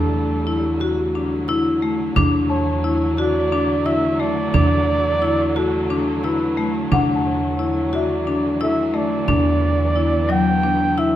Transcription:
0.00 2.13 E2 medium
0.00 11.16 D3 medium
0.00 11.16 F#3 medium
0.00 2.14 G3 soft
0.00 2.14 A3 medium
0.00 0.19 D4 medium
0.00 0.81 A4 medium
0.13 frame drum soft
0.47 0.67 E4 medium
0.80 1.01 F#4 medium
0.80 frame drum soft
1.15 1.35 D4 medium
1.48 1.69 E4 medium
1.48 frame drum soft
1.82 2.03 A3 medium
2.16 4.50 E2 medium
2.16 9.25 A3 medium
2.16 2.56 D4 medium
2.16 frame drum medium
2.50 3.14 C#5 medium
2.50 3.52 A5 medium
2.50 frame drum soft
2.84 3.04 E4 medium
3.17 3.38 F#4 medium
3.17 3.88 D5 medium
3.17 frame drum soft
3.52 3.72 D4 medium
3.86 4.06 E4 medium
3.86 4.88 D5 soft
3.86 4.22 E5 medium
3.86 frame drum soft
4.20 4.40 A3 medium
4.20 5.58 D5 loud
4.54 6.87 E2 medium
4.54 4.94 D4 medium
4.54 frame drum medium
5.22 5.42 E4 medium
5.22 frame drum soft
5.56 5.76 F#4 medium
5.56 6.27 A4 medium
5.56 frame drum soft
5.90 6.10 D4 medium
5.90 frame drum soft
6.24 6.44 E4 medium
6.24 6.76 B4 medium
6.24 frame drum soft
6.57 6.77 A3 medium
6.57 frame drum soft
6.91 9.24 E2 medium
6.91 11.16 E3 medium
6.91 7.31 D4 medium
6.91 7.94 F#5 medium
6.91 frame drum medium
7.16 8.13 A5 soft
7.26 7.95 C#5 medium
7.26 frame drum soft
7.59 7.79 E4 medium
7.93 8.13 F#4 medium
7.93 8.61 D5 medium
7.93 8.96 E5 soft
7.93 frame drum soft
8.27 8.47 D4 medium
8.61 8.81 E4 medium
8.61 9.63 A4 medium
8.61 8.97 E5 medium
8.61 frame drum soft
8.94 9.14 A3 medium
8.94 10.32 D5 medium
9.28 11.16 E2 medium
9.28 11.16 B3 medium
9.28 9.68 D4 medium
9.28 frame drum medium
9.62 frame drum soft
9.96 10.16 E4 medium
10.29 10.49 F#3 medium
10.29 11.00 G5 medium
10.29 frame drum soft
10.63 10.83 D4 medium
10.98 11.16 E4 medium
10.98 11.16 E5 medium
10.98 frame drum soft

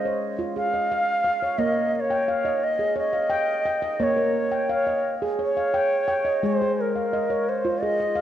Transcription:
0.00 1.56 G#3 medium
0.00 0.18 C5 medium
0.00 0.39 D#5 medium
0.05 0.39 C#5 medium
0.39 0.73 F4 medium
0.56 1.08 G#4 medium
0.56 1.60 F5 loud
0.74 1.25 D#5 medium
0.92 1.23 F5 medium
1.24 1.59 F5 medium
1.42 1.58 C#5 medium
1.58 1.94 A#3 medium
1.58 2.11 C#5 medium
1.58 1.96 D#5 medium
1.96 2.01 D#5 medium
2.00 2.65 C#5 medium
2.10 2.12 G5 medium
2.28 2.80 F5 medium
2.45 2.80 D#5 medium
2.64 2.98 D#5 medium
2.79 3.15 G#4 medium
2.96 3.49 C#5 medium
2.96 4.04 D#5 loud
3.13 3.66 F5 medium
3.30 3.64 G5 medium
3.65 4.01 G5 medium
3.82 4.35 D#5 medium
4.00 4.35 A#3 medium
4.00 4.53 C#5 medium
4.00 4.72 C#5 loud
4.17 4.70 A#4 medium
4.52 4.54 G5 medium
4.69 5.22 F5 medium
4.74 5.12 C#5 loud
4.87 5.22 D#5 medium
5.22 5.57 G#4 medium
5.39 5.91 C#5 medium
5.44 6.47 C#5 medium
5.57 6.09 F5 medium
5.74 6.07 G5 medium
6.08 6.43 G5 medium
6.25 6.60 D#5 medium
6.43 8.21 G#3 medium
6.43 6.60 G#4 medium
6.43 6.82 C5 medium
6.61 7.13 G#4 medium
6.81 7.51 A#4 medium
6.95 6.97 F5 medium
7.13 7.65 D#5 medium
7.30 7.65 C#5 medium
7.49 7.84 C5 medium
7.65 7.99 F4 medium
7.83 8.21 G#4 medium
7.83 8.21 D#5 medium
8.00 8.21 D#5 medium
8.15 8.21 F5 medium

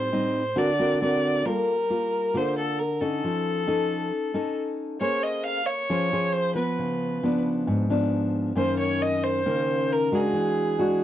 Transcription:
0.00 0.54 A2 medium
0.00 0.60 C5 medium
0.12 0.42 G3 medium
0.12 0.42 C4 soft
0.12 0.42 D#4 medium
0.56 1.43 D3 medium
0.56 0.69 C4 medium
0.56 0.69 F#4 medium
0.56 0.70 A#4 medium
0.56 1.02 D5 medium
0.79 0.98 C4 medium
0.79 0.98 F#4 medium
0.79 0.98 A#4 medium
1.02 1.42 C4 soft
1.02 1.42 F#4 soft
1.02 1.43 A#4 medium
1.02 1.48 D5 medium
1.46 2.32 G3 medium
1.46 1.74 A#3 soft
1.46 1.74 F4 soft
1.46 1.74 A4 soft
1.46 2.39 A#4 medium
1.90 2.31 A#3 medium
1.90 2.31 F4 soft
2.34 3.21 D3 medium
2.34 2.78 A#3 medium
2.34 2.79 F4 medium
2.34 2.79 A4 medium
2.34 2.58 C5 medium
2.58 2.81 A4 medium
2.79 3.03 A#4 medium
3.01 3.64 C#4 medium
3.01 3.64 D#4 medium
3.01 4.57 A4 medium
3.01 3.64 A4 medium
3.24 4.10 F3 medium
3.67 4.30 C#4 medium
3.67 4.31 D#4 medium
3.67 4.31 A4 medium
4.34 4.97 C#4 medium
4.34 4.97 D#4 medium
4.34 4.98 A4 medium
5.01 5.87 A#3 medium
5.01 5.60 C#4 soft
5.01 5.61 G#4 soft
5.01 5.61 C5 medium
5.01 5.25 C#5 medium
5.23 5.45 D#5 medium
5.45 5.68 F5 medium
5.67 6.35 C#5 medium
5.90 6.54 F3 medium
5.90 6.08 C#4 soft
5.90 6.09 G#4 medium
5.90 6.09 C5 medium
6.12 6.53 C#4 medium
6.12 6.53 G#4 soft
6.12 6.53 C5 medium
6.33 6.55 C5 medium
6.55 7.19 F3 medium
6.55 7.19 B3 medium
6.55 7.41 B4 medium
6.79 7.65 C#3 medium
7.23 7.86 F3 medium
7.23 7.87 B3 medium
7.23 7.87 D4 medium
7.67 8.54 G#2 medium
7.90 8.53 F3 medium
7.90 8.53 B3 medium
7.90 8.53 D4 medium
8.55 9.42 F#2 medium
8.55 9.41 D#3 soft
8.55 9.41 A#3 soft
8.55 9.42 C#4 medium
8.55 8.78 C5 medium
8.79 9.04 C#5 medium
9.02 9.25 D#5 loud
9.24 9.94 C5 medium
9.46 10.32 C#3 medium
9.46 10.08 D#3 medium
9.46 10.09 A#3 soft
9.46 10.09 C#4 soft
9.92 10.17 A#4 medium
10.12 10.75 G#3 soft
10.12 10.75 D4 medium
10.12 10.75 F#4 medium
10.12 11.02 G#4 medium
10.33 11.04 E3 medium
10.78 11.04 G#3 soft
10.78 11.04 D4 soft
10.78 11.04 F#4 medium

